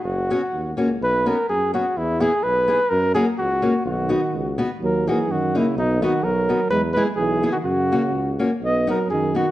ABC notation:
X:1
M:2/4
L:1/16
Q:"Swing" 1/4=126
K:B
V:1 name="Flugelhorn"
F6 z2 | B2 A2 G2 F2 | E2 G2 B4 | A2 G2 F4 |
F6 z2 | A2 G2 F2 E2 | D2 F2 A4 | B2 B2 G3 F |
F6 z2 | d2 A2 G2 F2 |]
V:2 name="Steel-string acoustic guitar"
z2 [B,CF]2 z2 [A,CF]2 | z2 [B,CF]2 z2 [B,CF]2 | z2 [B,EG]2 z2 [B,EG]2 | z2 [A,CF]2 z2 [A,CF]2 |
z2 [B,DF]2 z2 [B,DF]2 | z2 [A,DF]2 z2 [A,DF]2 | z2 [B,DF]2 z2 [B,DF]2 | z2 [B,EG]2 z2 [B,EG]2 |
z2 [A,CF]2 z2 [A,CF]2 | z2 [B,DF]2 z2 [B,DF]2 |]
V:3 name="Euphonium" clef=bass
z8 | z8 | z8 | z8 |
D,6 z2 | F,2 E,2 D,2 C,2 | B,,2 D,2 F,4 | G,2 G,2 E,3 D, |
C,6 z2 | B,2 F,2 D,2 D,2 |]
V:4 name="Tuba" clef=bass
F,,,4 D,,2 C,,2 | B,,,4 F,,4 | E,,4 B,,,4 | F,,4 C,,4 |
B,,,4 C,,4 | D,,4 F,,4 | B,,,4 B,,,4 | E,,4 B,,,4 |
F,,4 C,,4 | B,,,4 F,,4 |]